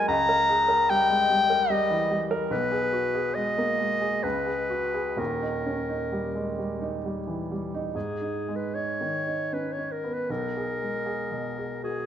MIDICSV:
0, 0, Header, 1, 3, 480
1, 0, Start_track
1, 0, Key_signature, 5, "minor"
1, 0, Tempo, 817439
1, 55, Time_signature, 3, 2, 24, 8
1, 1974, Tempo, 878477
1, 2454, Tempo, 944882
1, 3414, Tempo, 909091
1, 4374, Tempo, 789474
1, 5334, Tempo, 763359
1, 6927, End_track
2, 0, Start_track
2, 0, Title_t, "Clarinet"
2, 0, Program_c, 0, 71
2, 48, Note_on_c, 0, 82, 114
2, 529, Note_on_c, 0, 79, 111
2, 538, Note_off_c, 0, 82, 0
2, 1003, Note_on_c, 0, 75, 99
2, 1012, Note_off_c, 0, 79, 0
2, 1314, Note_off_c, 0, 75, 0
2, 1475, Note_on_c, 0, 71, 94
2, 1966, Note_on_c, 0, 75, 96
2, 1974, Note_off_c, 0, 71, 0
2, 2449, Note_on_c, 0, 71, 85
2, 2457, Note_off_c, 0, 75, 0
2, 2936, Note_on_c, 0, 70, 66
2, 2944, Note_off_c, 0, 71, 0
2, 3902, Note_off_c, 0, 70, 0
2, 4371, Note_on_c, 0, 68, 65
2, 4747, Note_on_c, 0, 71, 63
2, 4756, Note_off_c, 0, 68, 0
2, 4860, Note_on_c, 0, 73, 80
2, 4869, Note_off_c, 0, 71, 0
2, 5337, Note_on_c, 0, 71, 66
2, 5347, Note_off_c, 0, 73, 0
2, 5459, Note_on_c, 0, 73, 59
2, 5469, Note_off_c, 0, 71, 0
2, 5580, Note_on_c, 0, 70, 68
2, 5589, Note_off_c, 0, 73, 0
2, 5717, Note_on_c, 0, 71, 64
2, 5726, Note_off_c, 0, 70, 0
2, 5828, Note_on_c, 0, 70, 75
2, 5838, Note_off_c, 0, 71, 0
2, 6784, Note_off_c, 0, 70, 0
2, 6787, Note_on_c, 0, 68, 69
2, 6927, Note_off_c, 0, 68, 0
2, 6927, End_track
3, 0, Start_track
3, 0, Title_t, "Grand piano"
3, 0, Program_c, 1, 0
3, 0, Control_c, 1, 64, 127
3, 0, Note_on_c, 1, 54, 49
3, 0, Note_on_c, 1, 56, 51
3, 0, Note_on_c, 1, 58, 47
3, 0, Note_on_c, 1, 68, 42
3, 0, Note_on_c, 1, 70, 55
3, 49, Note_on_c, 1, 37, 67
3, 65, Control_c, 1, 64, 0
3, 68, Note_off_c, 1, 70, 0
3, 70, Note_off_c, 1, 54, 0
3, 70, Note_off_c, 1, 56, 0
3, 70, Note_off_c, 1, 58, 0
3, 72, Note_off_c, 1, 68, 0
3, 169, Note_on_c, 1, 70, 53
3, 178, Control_c, 1, 64, 127
3, 289, Note_on_c, 1, 68, 47
3, 365, Note_off_c, 1, 70, 0
3, 403, Note_on_c, 1, 70, 51
3, 412, Note_off_c, 1, 68, 0
3, 530, Note_on_c, 1, 55, 44
3, 598, Note_off_c, 1, 70, 0
3, 646, Note_on_c, 1, 56, 47
3, 720, Note_off_c, 1, 55, 0
3, 763, Note_on_c, 1, 55, 43
3, 767, Note_off_c, 1, 56, 0
3, 881, Note_on_c, 1, 70, 47
3, 957, Note_off_c, 1, 55, 0
3, 998, Note_on_c, 1, 55, 54
3, 1076, Note_off_c, 1, 70, 0
3, 1118, Note_on_c, 1, 52, 40
3, 1193, Note_off_c, 1, 55, 0
3, 1237, Note_on_c, 1, 55, 44
3, 1241, Note_off_c, 1, 52, 0
3, 1356, Note_on_c, 1, 70, 61
3, 1430, Note_off_c, 1, 55, 0
3, 1454, Note_off_c, 1, 37, 0
3, 1472, Note_on_c, 1, 35, 56
3, 1477, Note_off_c, 1, 70, 0
3, 1493, Control_c, 1, 64, 0
3, 1589, Control_c, 1, 64, 127
3, 1594, Note_on_c, 1, 68, 47
3, 1719, Note_on_c, 1, 66, 43
3, 1794, Note_off_c, 1, 68, 0
3, 1845, Note_off_c, 1, 66, 0
3, 1848, Note_on_c, 1, 68, 50
3, 1973, Note_on_c, 1, 56, 47
3, 2044, Note_off_c, 1, 68, 0
3, 2093, Note_on_c, 1, 58, 46
3, 2162, Note_off_c, 1, 56, 0
3, 2211, Note_off_c, 1, 58, 0
3, 2211, Note_on_c, 1, 56, 42
3, 2330, Note_on_c, 1, 68, 45
3, 2404, Note_off_c, 1, 56, 0
3, 2427, Note_off_c, 1, 35, 0
3, 2452, Note_on_c, 1, 37, 54
3, 2453, Note_off_c, 1, 68, 0
3, 2465, Control_c, 1, 64, 0
3, 2567, Control_c, 1, 64, 127
3, 2568, Note_on_c, 1, 68, 44
3, 2686, Note_on_c, 1, 66, 40
3, 2761, Note_off_c, 1, 68, 0
3, 2809, Note_off_c, 1, 66, 0
3, 2809, Note_on_c, 1, 68, 48
3, 2919, Note_off_c, 1, 37, 0
3, 2923, Note_on_c, 1, 27, 47
3, 2929, Note_on_c, 1, 39, 52
3, 2933, Note_off_c, 1, 68, 0
3, 2946, Control_c, 1, 64, 0
3, 3047, Control_c, 1, 64, 127
3, 3053, Note_on_c, 1, 63, 46
3, 3175, Note_on_c, 1, 61, 37
3, 3246, Note_off_c, 1, 63, 0
3, 3294, Note_on_c, 1, 63, 43
3, 3295, Note_off_c, 1, 61, 0
3, 3410, Note_on_c, 1, 55, 37
3, 3485, Note_off_c, 1, 63, 0
3, 3531, Note_on_c, 1, 56, 37
3, 3606, Note_off_c, 1, 55, 0
3, 3655, Note_off_c, 1, 56, 0
3, 3655, Note_on_c, 1, 55, 38
3, 3775, Note_on_c, 1, 63, 44
3, 3851, Note_off_c, 1, 55, 0
3, 3901, Note_on_c, 1, 55, 41
3, 3972, Note_off_c, 1, 63, 0
3, 4018, Note_on_c, 1, 52, 33
3, 4096, Note_off_c, 1, 55, 0
3, 4142, Note_off_c, 1, 52, 0
3, 4145, Note_on_c, 1, 55, 39
3, 4267, Note_on_c, 1, 63, 50
3, 4330, Note_off_c, 1, 55, 0
3, 4347, Note_off_c, 1, 27, 0
3, 4350, Note_off_c, 1, 39, 0
3, 4375, Note_off_c, 1, 63, 0
3, 4376, Note_on_c, 1, 44, 43
3, 4384, Control_c, 1, 64, 0
3, 4493, Control_c, 1, 64, 127
3, 4537, Note_on_c, 1, 63, 37
3, 4700, Note_on_c, 1, 56, 36
3, 4796, Note_off_c, 1, 63, 0
3, 4861, Note_on_c, 1, 63, 34
3, 4956, Note_off_c, 1, 56, 0
3, 5019, Note_on_c, 1, 51, 38
3, 5114, Note_off_c, 1, 63, 0
3, 5177, Note_on_c, 1, 63, 31
3, 5271, Note_off_c, 1, 51, 0
3, 5334, Note_on_c, 1, 61, 29
3, 5430, Note_off_c, 1, 63, 0
3, 5489, Note_on_c, 1, 63, 35
3, 5494, Note_off_c, 1, 61, 0
3, 5656, Note_on_c, 1, 59, 35
3, 5748, Note_off_c, 1, 63, 0
3, 5791, Note_off_c, 1, 44, 0
3, 5815, Note_off_c, 1, 59, 0
3, 5819, Note_on_c, 1, 35, 48
3, 5824, Control_c, 1, 64, 0
3, 5921, Control_c, 1, 64, 127
3, 5987, Note_on_c, 1, 68, 36
3, 6146, Note_on_c, 1, 56, 33
3, 6236, Note_off_c, 1, 68, 0
3, 6299, Note_on_c, 1, 68, 41
3, 6397, Note_off_c, 1, 56, 0
3, 6458, Note_on_c, 1, 47, 36
3, 6555, Note_off_c, 1, 68, 0
3, 6625, Note_on_c, 1, 68, 34
3, 6715, Note_off_c, 1, 47, 0
3, 6785, Note_on_c, 1, 66, 32
3, 6875, Note_off_c, 1, 68, 0
3, 6927, Note_off_c, 1, 35, 0
3, 6927, Note_off_c, 1, 66, 0
3, 6927, End_track
0, 0, End_of_file